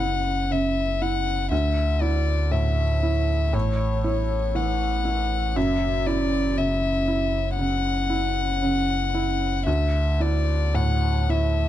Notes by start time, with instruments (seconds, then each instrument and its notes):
Already playing: sub bass F#1, felt piano C#3, violin F#5
0.00 felt piano E4
0.51 felt piano C#3, violin E5
1.02 felt piano E4, violin F#5
1.51 felt piano D2, sub bass D2, violin E5
2.01 felt piano E4, violin D5
2.51 felt piano A2, violin E5
3.03 felt piano E4
3.53 sub bass A1, felt piano A2, violin C#5
4.04 felt piano E4, violin C#5
4.55 felt piano E3, violin F#5
5.05 felt piano E4
5.56 sub bass F#1, felt piano F#2, violin E5
6.06 felt piano E4, violin D5
6.57 felt piano C#3, violin E5
7.08 felt piano E4
7.59 felt piano C#3, violin F#5
8.10 felt piano E4
8.62 felt piano C#3
9.14 felt piano E4
9.66 felt piano D2, sub bass D2, violin E5
10.20 felt piano E4, violin D5
10.74 felt piano A2, violin F#5
11.29 felt piano E4, violin E5